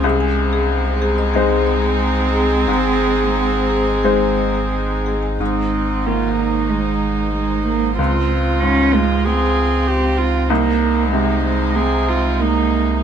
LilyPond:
<<
  \new Staff \with { instrumentName = "Marimba" } { \time 4/4 \key aes \major \tempo 4 = 93 aes'16 aes''16 aes''16 aes'16 r16 c''16 aes'16 ees''16 aes'16 aes''16 ees''16 aes'16 aes''16 r16 aes'16 aes''16 | aes'16 aes''16 aes''16 aes'16 r16 c''16 aes'16 ees''16 aes'16 aes''16 ees''16 aes'16 aes''16 r16 aes'16 aes''16 | r1 | r1 |
r1 | }
  \new Staff \with { instrumentName = "Viola" } { \time 4/4 \key aes \major aes'1~ | aes'2.~ aes'8 r8 | ees'4 f'8 ees'2~ ees'8 | f'2 aes'4 g'8 f'8 |
ees'8 ees'4. aes'8 f'8 ees'4 | }
  \new Staff \with { instrumentName = "String section" } { \time 4/4 \key aes \major << { <aes c''>1~ | <aes c''>1 | <aes c''>1~ | <aes c''>1 |
<aes c''>1 | } \\ { ees'1~ | ees'1 | ees'1 | f'1 |
ees'1 | } >> }
  \new Staff \with { instrumentName = "Cello" } { \time 4/4 \key aes \major c'1~ | c'2.~ c'8 r8 | c'4 bes4 aes4 aes8 bes8 | c'4 des'8 aes8 c'2 |
bes4 aes8 aes8 c'4 bes4 | }
  \new Staff \with { instrumentName = "Upright piano" } { \clef bass \time 4/4 \key aes \major c,2 <aes ees' c''>2 | aes,2 <aes ees' c''>2 | aes,4 ees2. | des,4 aes,2. |
c,4 c2. | }
  \new Staff \with { instrumentName = "Sub bass" } { \clef bass \time 4/4 \key aes \major c,1 | aes,,1 | aes,,1 | des,1 |
c,1 | }
>>